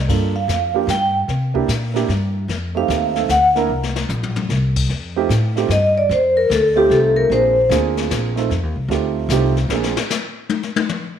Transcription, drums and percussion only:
0.09 brush sweep soft
0.09 kick medium
0.09 snare soft
0.09 crash medium
0.49 snare medium
0.49 hi-hat pedal soft
0.88 snare medium
0.88 hi-hat pedal soft
1.29 brush sweep soft
1.29 snare soft
1.55 kick medium
1.69 snare medium
1.69 hi-hat pedal medium
1.95 snare soft
2.09 snare soft
2.49 brush sweep soft
2.49 snare soft
2.90 snare medium
2.90 hi-hat pedal soft
3.15 snare soft
3.29 snare medium
3.29 hi-hat pedal medium
3.56 snare soft
3.83 snare soft
3.96 snare medium
4.09 floor tom medium
4.09 hi-hat pedal medium
4.23 floor tom medium
4.36 floor tom medium
4.50 snare soft
4.76 kick medium
4.76 crash medium
4.90 brush sweep medium
4.90 snare soft
5.30 snare medium
5.30 hi-hat pedal soft
5.57 snare soft
5.70 snare medium
5.70 hi-hat pedal medium
6.11 brush sweep medium
6.11 snare soft
6.51 snare medium
6.51 hi-hat pedal medium
6.91 snare soft
7.31 brush sweep soft
7.31 snare soft
7.71 snare medium
7.71 hi-hat pedal medium
7.97 snare medium
8.11 snare medium
8.11 hi-hat pedal soft
8.37 snare soft
8.51 brush sweep soft
8.51 snare soft
8.91 snare soft
9.30 snare medium
9.30 hi-hat pedal medium
9.57 snare soft
9.70 snare medium
9.83 snare medium
9.97 snare medium
10.10 snare medium
10.10 hi-hat pedal medium
10.49 high tom medium
10.63 snare soft
10.76 high tom loud
10.89 mid tom medium

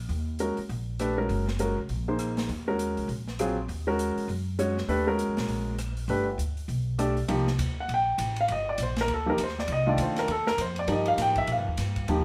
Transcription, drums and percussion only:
0.09 open hi-hat soft
0.39 closed hi-hat medium
0.57 open hi-hat soft
0.70 open hi-hat soft
0.99 cross-stick medium
0.99 closed hi-hat medium
1.29 open hi-hat soft
1.48 snare soft
1.59 closed hi-hat medium
1.89 open hi-hat soft
2.19 cross-stick medium
2.19 closed hi-hat medium
2.37 snare medium
2.37 open hi-hat soft
2.49 open hi-hat soft
2.79 closed hi-hat medium
2.97 open hi-hat soft
3.09 open hi-hat soft
3.28 snare soft
3.39 cross-stick medium
3.39 closed hi-hat medium
3.69 open hi-hat soft
3.99 closed hi-hat medium
4.18 open hi-hat soft
4.29 open hi-hat soft
4.59 cross-stick medium
4.59 closed hi-hat medium
4.78 snare soft
4.89 open hi-hat soft
5.19 closed hi-hat medium
5.37 snare medium
5.37 open hi-hat soft
5.48 open hi-hat soft
5.79 cross-stick medium
5.79 closed hi-hat medium
5.97 open hi-hat soft
6.09 open hi-hat soft
6.39 closed hi-hat medium
6.57 open hi-hat soft
6.69 open hi-hat soft
6.99 cross-stick medium
6.99 closed hi-hat medium
7.17 open hi-hat soft
7.28 ride medium
7.47 snare soft
7.59 hi-hat pedal medium
7.59 ride medium
7.89 ride medium
8.18 hi-hat pedal medium
8.18 ride medium
8.36 ride soft
8.48 ride medium
8.78 hi-hat pedal medium
8.78 ride medium
8.96 snare medium
8.96 ride soft
9.08 ride medium
9.38 hi-hat pedal medium
9.38 ride medium
9.48 snare soft
9.59 snare soft
9.68 ride medium
9.98 hi-hat pedal medium
9.98 ride medium
10.16 snare soft
10.16 ride soft
10.28 ride medium
10.47 snare medium
10.58 hi-hat pedal medium
10.58 ride medium
10.76 ride soft
10.88 ride medium
11.06 ride soft
11.18 snare soft
11.18 hi-hat pedal medium
11.18 ride medium
11.35 kick medium
11.35 ride soft
11.47 ride medium
11.77 snare soft
11.77 hi-hat pedal medium
11.77 ride medium
11.96 kick medium
11.96 ride soft
12.08 ride medium

